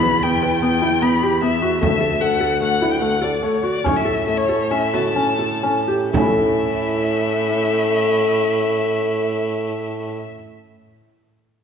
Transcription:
0.00 1.79 E2 medium
0.00 0.16 B4 medium
0.00 0.24 B5 loud
0.23 0.36 B3 medium
0.23 0.61 G5 medium
0.43 0.55 B4 medium
0.62 0.75 B3 medium
0.62 1.03 G5 medium
0.82 0.95 E4 medium
0.82 frame drum medium
1.02 1.15 B3 medium
1.02 1.42 B5 medium
1.23 1.35 G4 medium
1.23 frame drum soft
1.42 1.55 B3 medium
1.42 1.80 E5 medium
1.42 frame drum soft
1.62 1.75 F#4 medium
1.81 3.53 D2 medium
1.81 1.94 A3 medium
1.81 2.22 E5 medium
1.81 frame drum medium
2.01 2.14 A4 medium
2.21 2.34 A3 medium
2.21 2.61 F#5 medium
2.41 2.54 A4 medium
2.61 2.74 A3 medium
2.61 2.90 F#5 medium
2.82 2.95 E4 medium
2.82 frame drum soft
2.91 3.01 G5 medium
3.01 3.14 A3 medium
3.01 3.24 F#5 medium
3.22 3.35 A4 medium
3.22 3.45 D5 medium
3.22 frame drum soft
3.42 3.56 A3 medium
3.42 3.66 C#5 medium
3.42 frame drum soft
3.63 3.76 F#4 medium
3.63 3.87 D5 medium
3.84 6.08 A2 medium
3.84 3.98 C#4 medium
3.84 3.98 C#5 medium
3.84 frame drum medium
3.96 4.27 E5 medium
4.05 4.19 A4 medium
4.27 4.41 A3 medium
4.27 4.39 E5 medium
4.27 frame drum soft
4.37 4.72 C#5 medium
4.49 4.63 A4 medium
4.71 4.85 C#4 medium
4.71 4.96 E5 medium
4.93 5.08 F#4 medium
4.93 5.88 A5 medium
4.93 frame drum medium
5.16 5.31 C#4 medium
5.16 frame drum soft
5.39 5.54 A4 medium
5.39 frame drum soft
5.63 5.79 C#4 medium
5.88 6.03 G4 medium
5.88 frame drum soft
6.12 10.27 A2 medium
6.12 10.26 A3 medium
6.12 10.26 E5 medium
6.12 frame drum medium
6.17 10.31 C#4 medium
6.17 10.35 E4 medium
6.25 10.38 A4 medium

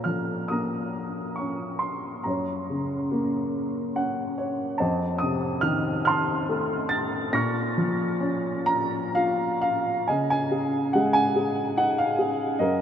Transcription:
0.00 2.22 A#2 soft
0.00 0.92 C#5 soft
0.00 0.92 F5 soft
0.00 0.52 A#5 soft
0.00 0.51 F6 soft
0.06 1.78 F3 soft
0.48 2.22 A#3 soft
0.48 1.79 A#5 soft
0.48 1.41 D#6 soft
1.36 2.23 C#4 soft
1.36 1.82 C#6 soft
1.79 2.25 C6 soft
2.24 4.74 F#2 soft
2.24 3.50 C#5 soft
2.24 3.48 A#5 soft
2.70 4.34 C#3 soft
3.12 4.75 A#3 soft
3.96 4.76 C#4 soft
3.96 4.35 F#5 medium
4.38 4.76 C#5 soft
4.78 7.29 F2 soft
4.78 6.01 C5 soft
4.78 6.01 D#5 soft
4.78 5.21 A5 medium
5.19 6.87 C3 soft
5.19 5.63 D#6 medium
5.61 7.29 D#3 soft
5.61 6.04 F6 medium
6.05 7.30 A5 medium
6.05 7.30 C6 medium
6.05 6.92 F6 medium
6.49 7.31 A3 soft
6.89 7.33 A6 medium
7.33 10.05 A#2 medium
7.33 9.61 C#6 medium
7.33 9.61 F6 soft
7.33 9.60 A#6 medium
7.78 9.61 F3 soft
8.21 10.04 C#4 medium
8.66 9.17 A#5 medium
9.15 10.06 F4 soft
9.15 9.60 F5 medium
9.62 10.09 F5 medium
10.08 12.57 C#3 soft
10.08 11.32 D#5 soft
10.08 10.28 G#5 medium
10.30 10.90 G#5 medium
10.51 11.34 G#4 soft
10.93 12.57 G#3 soft
10.93 11.15 F#5 medium
11.13 11.79 G#5 medium
11.36 12.17 G#4 soft
11.78 12.58 D#4 soft
11.78 11.97 F#5 medium
11.98 12.62 F5 medium
12.19 12.59 G#4 soft
12.59 12.81 F#2 medium
12.59 12.81 A#4 soft
12.59 12.81 D#5 medium

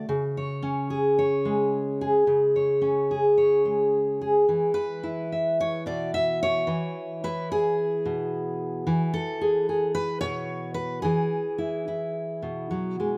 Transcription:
0.09 2.23 C#3 medium
0.37 1.18 C#5 medium
0.62 2.23 C#4 medium
0.90 2.01 G#4 medium
1.19 2.24 C#5 medium
1.45 3.65 G#3 medium
2.01 3.10 G#4 medium
2.27 4.44 C#3 medium
2.56 3.36 C#5 medium
2.81 4.44 C#4 medium
3.11 4.21 G#4 medium
3.38 4.45 C#5 medium
3.65 5.85 G#3 medium
4.21 4.74 G#4 medium
4.49 6.67 E3 medium
4.74 5.85 B4 loud
5.03 7.23 E4 medium
5.32 5.60 E5 soft
5.60 5.86 C#5 loud
5.86 6.68 B2 medium
5.86 6.13 D5 medium
6.14 6.41 E5 loud
6.43 7.79 C#5 loud
6.67 8.86 E3 medium
7.24 9.41 E4 medium
7.24 7.51 B4 medium
7.52 9.13 G#4 medium
8.05 8.87 B2 medium
8.87 11.04 E3 medium
9.14 9.94 A4 medium
9.41 9.69 G#4 medium
9.69 11.01 G#4 soft
9.95 10.20 B4 loud
10.21 11.04 B2 medium
10.21 10.74 C#5 loud
10.74 11.02 B4 medium
11.02 12.70 E3 medium
11.02 13.18 G#4 medium
11.58 11.86 E4 medium
11.88 13.18 E4 soft
12.42 13.18 B2 medium
12.71 12.98 F#3 medium
13.00 13.18 G#3 medium

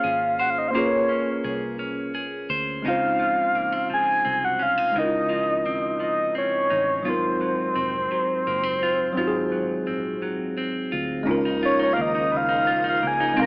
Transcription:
0.00 0.69 A#3 medium
0.00 0.74 A#3 medium
0.00 0.70 C#4 medium
0.00 1.09 C#4 medium
0.00 0.71 F4 medium
0.00 0.72 G#4 medium
0.00 1.44 G#4 medium
0.00 0.39 C5 medium
0.00 0.73 C5 medium
0.00 0.42 F5 medium
0.04 0.74 G#1 medium
0.39 0.75 C5 medium
0.39 0.51 F#5 medium
0.50 0.60 F5 medium
0.58 0.69 D#5 medium
0.68 2.79 A#3 medium
0.68 0.80 C5 soft
0.68 0.70 F5 medium
0.73 1.40 A#1 medium
0.73 2.85 A#3 medium
0.73 2.80 C#4 soft
0.73 2.81 F4 soft
0.73 2.49 C5 medium
0.77 2.82 G#4 soft
0.77 0.83 B4 soft
0.77 1.55 C#5 medium
0.85 2.86 A#4 medium
1.09 1.79 C#4 medium
1.44 2.46 C2 medium
1.44 2.14 G#4 medium
1.79 3.55 C#4 medium
2.15 2.85 G#4 soft
2.50 2.81 D2 medium
2.50 3.58 C5 medium
2.82 3.55 C#2 medium
2.82 4.94 C#3 medium
2.82 4.90 G#3 medium
2.82 4.91 C4 soft
2.82 4.59 D#4 medium
2.87 4.92 D#4 soft
2.87 4.93 F4 medium
2.87 4.94 C5 medium
2.87 3.88 F5 loud
3.19 3.89 F3 medium
3.55 3.87 A#1 medium
3.55 3.72 A#3 soft
3.72 4.24 C4 soft
3.90 5.29 F3 medium
3.90 4.46 G#5 loud
3.90 muted fingered electric bass stroke soft
4.25 4.92 C2 medium
4.25 5.65 C4 medium
4.44 4.64 F#5 medium
4.59 4.78 C#4 medium
4.59 5.00 F5 medium
4.78 4.94 D#4 soft
4.92 5.65 C#2 medium
4.92 7.01 C#3 soft
4.92 7.06 C#3 medium
4.92 7.00 G#3 medium
4.92 6.70 D#4 soft
4.96 7.02 D#4 soft
4.96 5.03 E4 soft
4.96 6.02 D#5 loud
5.00 7.04 A#4 medium
5.05 7.06 F4 medium
5.29 6.00 F3 medium
5.65 6.67 D#2 medium
5.65 6.35 C4 soft
6.00 7.40 F3 medium
6.00 6.35 D#5 medium
6.35 7.44 C4 medium
6.35 7.10 C#5 medium
6.70 7.03 A1 medium
6.70 7.05 D#4 medium
7.03 7.72 G#1 medium
7.03 9.16 G#2 medium
7.03 9.11 F#3 medium
7.03 7.12 B3 soft
7.03 9.13 D#4 soft
7.03 8.82 F4 medium
7.08 9.13 C4 medium
7.08 9.14 F4 soft
7.08 9.14 A#4 medium
7.08 10.58 C5 medium
7.41 8.11 F#3 soft
7.76 8.08 F1 medium
7.76 8.46 C4 medium
8.12 9.51 F#3 medium
8.47 9.13 F#1 medium
8.47 8.63 A#3 medium
8.63 9.86 C4 soft
8.83 9.17 F4 medium
9.13 11.21 F#3 medium
9.13 11.22 C4 medium
9.17 9.88 G#1 medium
9.17 11.26 G#2 medium
9.17 11.23 D#4 medium
9.17 10.92 F4 medium
9.17 11.24 F4 medium
9.17 9.25 F#4 medium
9.27 11.28 G#4 medium
9.52 10.21 F#3 soft
9.87 10.89 A#1 medium
9.87 10.56 C4 soft
10.22 11.34 F#3 soft
10.57 11.34 C4 medium
10.92 11.24 D2 medium
10.92 11.48 F4 medium
11.23 13.35 C#3 medium
11.23 12.31 C#3 medium
11.23 13.35 F3 medium
11.23 13.32 G#3 medium
11.23 13.46 A#3 medium
11.23 13.33 C#4 medium
11.23 13.35 D#4 medium
11.23 13.34 D#4 medium
11.28 11.94 C#2 medium
11.28 13.35 F4 medium
11.28 13.35 A#4 medium
11.45 11.79 D#4 medium
11.63 12.67 F4 medium
11.63 11.80 C#5 medium
11.79 12.14 D#4 medium
11.79 11.95 C#5 medium
11.93 13.02 A#3 medium
11.93 12.03 F5 medium
11.99 12.99 D#2 medium
11.99 12.38 D#5 medium
12.15 12.48 D#4 medium
12.32 13.44 C#3 medium
12.37 12.87 F5 medium
12.49 12.84 D#4 medium
12.67 13.46 F4 medium
12.84 13.20 D#4 medium
12.89 13.08 F5 medium
13.03 13.35 C#2 medium
13.03 13.36 A#3 medium
13.07 13.40 G#5 medium
13.20 13.46 D#4 medium
13.34 13.46 C3 medium
13.34 13.46 G#3 medium
13.34 13.46 C4 medium
13.34 13.46 D#4 medium
13.38 13.46 C2 loud
13.38 13.46 A#4 medium
13.38 13.46 F5 medium
13.38 13.46 A#5 loud

